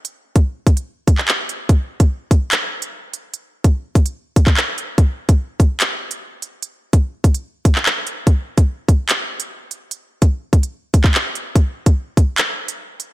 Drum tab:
HH |x--x--xx--x---x-|x--x--x-x--x--x-|x--x--xx--x---x-|x--x--x-x--x--x-|
CP |-----------xx---|--------x-------|-----------xx---|--------x-------|
BD |---o--o---o-----|o--o--o---------|---o--o---oo----|o--o--o---------|

HH |x--x--xx--x---x-|x--x--x-x--x--x-|x--x--xx--x---x-|x--x--x-x--x--x-|
CP |-----------xx---|--------x-------|-----------xx---|--------x-------|
BD |---o--o---o-----|o--o--o---------|---o--o---oo----|o--o--o---------|